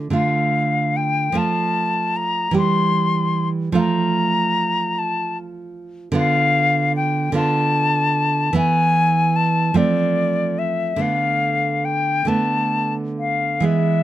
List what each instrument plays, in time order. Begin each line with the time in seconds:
Already playing: nylon-string guitar F4
0.10 nylon-string guitar D3 A3 F4
0.15 flute F5
0.97 flute G5
1.32 nylon-string guitar F3 A3 F4
1.37 flute A5
2.17 flute A#5
2.51 nylon-string guitar E3 G3 G4
2.57 flute C6
3.72 nylon-string guitar F3 A3 F4
3.77 flute A#5
4.99 flute A5
6.12 nylon-string guitar D3 B3 F4
6.16 flute F5
6.96 flute G5
7.32 nylon-string guitar D3 B3 F4, flute A5
8.53 nylon-string guitar E3 B3 E4
8.57 flute G#5
9.36 flute A5
9.74 nylon-string guitar F3 A3 C4, flute D5
10.59 flute E5
10.96 nylon-string guitar D3 A3 B3
11.01 flute F5
11.85 flute G5
12.25 nylon-string guitar D3 A3 B3, flute A5
13.19 flute F5
13.60 nylon-string guitar E3 G#3 B3
13.65 flute E5